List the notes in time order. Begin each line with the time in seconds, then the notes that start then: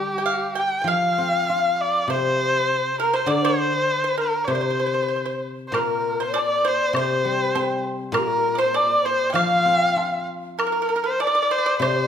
Already playing: D3 G3 G4
0.18 G5
0.26 F5
0.55 G5
0.81 F3 G5
0.86 F5
1.18 C4
1.49 F4
1.81 D5
2.08 C3 C5
3.00 A#4
3.13 C5
3.26 D3 D5
3.31 D5
3.42 C5
3.47 A#4
3.55 C5
4.04 C5
4.13 C5
4.18 A#4
4.44 C3 C5 D5
4.51 C5 D5
4.61 C5
4.70 C5
4.80 C5
4.86 C5
4.94 C5
5.03 C5
5.08 C5
5.16 C5
5.25 C5
5.68 A#2 A#4 C5
5.74 A#4, high woodblock
5.79 A#4
6.20 C5
6.34 D5, low woodblock
6.39 D5
6.65 C5
6.88 D5
6.93 C3 C5, high woodblock
6.99 C5
7.25 G3
7.55 C4 C5, low woodblock
8.12 A#2 A#4, high woodblock
8.16 G4 A#4
8.28 A#4
8.55 C5 D5
8.59 C5
8.74 D5, low woodblock
9.03 C5
9.30 F3 G5
9.35 F5, high woodblock
9.65 C4
9.96 F4, low woodblock
10.59 A#4, high woodblock
10.67 A#4
10.72 A#4
10.82 A#4
10.89 A#4
10.96 A#4
11.04 A#4 C5
11.20 D5, low woodblock
11.27 D5
11.35 D5
11.42 D5
11.51 C5 D5
11.58 D5
11.66 D5
11.79 C3 C5, high woodblock
11.87 D5
11.96 C5
12.04 D5